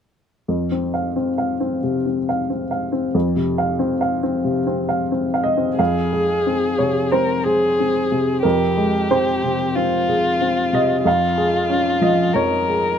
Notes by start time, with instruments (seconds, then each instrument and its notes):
0.48 upright piano F2
0.71 upright piano C4
0.94 upright piano F5
1.16 upright piano C4
1.38 upright piano F5
1.60 upright piano C4
1.83 upright piano C3
2.06 upright piano C4
2.29 upright piano F5
2.50 upright piano C4
2.71 upright piano F5
2.92 upright piano C4
3.15 upright piano F2
3.36 upright piano C3
3.58 upright piano F5
3.79 upright piano C4
4.01 upright piano F5
4.23 upright piano C4
4.44 upright piano C3
4.67 upright piano C4
4.89 upright piano F5
5.12 upright piano C4
5.34 upright piano F5
5.44 upright piano D#5
5.57 upright piano C4
5.78 upright piano F2 F5, violin G#4
6.12 upright piano G#4
6.46 upright piano C4
6.78 upright piano C3 C#5
7.12 upright piano C4 C5, violin A#4
7.44 violin G#4, upright piano G#4
7.80 upright piano C4
8.12 upright piano C3
8.43 upright piano F2 A#4, violin G4
8.77 upright piano G#3
9.11 upright piano C4 C5
9.44 upright piano C3
9.75 upright piano C4, violin F4
10.09 upright piano G#4
10.41 upright piano C4
10.73 upright piano C3 D#5
11.05 upright piano F2 F5, violin F4
11.38 upright piano G#4
11.70 upright piano C#4
12.01 upright piano F3 D#5
12.33 upright piano F2 C#5, violin A#4
12.69 upright piano G#4